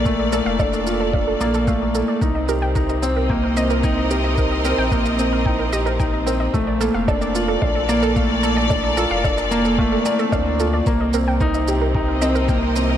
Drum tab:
SH |x-x-xxx---xxx-x-|x-x-xxx---xxx-x-|x-x-xxx---xxx-x-|x-x-xxx---xxx-x-|
BD |o---o---o---o---|o---o---o---o---|o---o---o---o---|o---o---o---o---|

SH |x-x-xxxx--xxx-x-|x-x-xxx---xxx-x-|
BD |o---o---o---o---|o---o---o---o---|